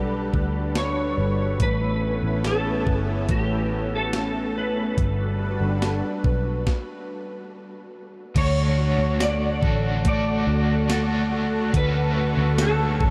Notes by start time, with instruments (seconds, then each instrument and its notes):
Already playing: picked electric bass B1, analog synth pad G3 D4 A4 B4 F#5, clean electric guitar G3 D4 B4, electric slide guitar G4
0.33 picked electric bass D2, clean electric guitar B4, kick
0.54 clean electric guitar F#4
0.75 clean electric guitar D4, electric slide guitar C#5, snare, closed hi-hat
0.97 clean electric guitar F#4
1.17 picked electric bass G1, clean electric guitar B4
1.39 clean electric guitar F#4
1.60 picked electric bass A1, clean electric guitar A3, analog synth pad A3 B3 C#4, electric slide guitar B4, kick, closed hi-hat
1.81 clean electric guitar E4
2.02 clean electric guitar B4
2.23 picked electric bass A1, clean electric guitar E4
2.44 clean electric guitar C#4, electric slide guitar A4, snare, closed hi-hat
2.66 clean electric guitar E4
2.87 picked electric bass G1, clean electric guitar B4, kick
3.08 clean electric guitar E4
3.29 picked electric bass A1, clean electric guitar A3, electric slide guitar G4, kick, closed hi-hat
3.50 clean electric guitar E4
3.72 clean electric guitar B4
3.93 clean electric guitar E4, electric slide guitar A4
4.13 clean electric guitar C#4, snare, closed hi-hat
4.35 clean electric guitar E4
4.56 clean electric guitar B4, electric slide guitar B4
4.77 clean electric guitar E4
4.97 picked electric bass G1, analog synth pad G3 D4 F#4 A4 B4, clean electric guitar G3, kick, closed hi-hat
5.19 clean electric guitar F#4
5.40 clean electric guitar B4
5.61 picked electric bass G1, clean electric guitar F#4
5.82 clean electric guitar D4, snare, closed hi-hat
6.03 clean electric guitar F#4
6.24 picked electric bass B1, clean electric guitar B4, kick
6.45 clean electric guitar F#4
6.67 kick, snare
8.35 picked electric bass D2, overdriven electric guitar D3 A3 F#4 A4, clean electric guitar D3, analog synth pad A4 F#5 C#6, electric slide guitar C#5, kick, closed hi-hat, crash
8.78 clean electric guitar F#4
8.99 picked electric bass D2
9.20 electric slide guitar D5, snare, closed hi-hat, tambourine
9.61 picked electric bass A1, overdriven electric guitar F#4 A4, clean electric guitar A4, kick
10.04 overdriven electric guitar A3 F#4, clean electric guitar A3, kick, closed hi-hat
10.08 overdriven electric guitar A4, electric slide guitar D5
10.47 picked electric bass D2, clean electric guitar F#4
10.88 overdriven electric guitar A3 F#4, snare, closed hi-hat, tambourine
10.92 overdriven electric guitar A4
11.32 clean electric guitar F#4
11.72 picked electric bass D2, overdriven electric guitar D3 A3 C#4, clean electric guitar D3, kick, closed hi-hat
11.77 overdriven electric guitar F#4 A4, electric slide guitar B4
12.16 clean electric guitar F#4
12.37 picked electric bass D2
12.58 clean electric guitar C#4, electric slide guitar A4, snare, closed hi-hat, tambourine
13.00 picked electric bass A1, clean electric guitar A4, kick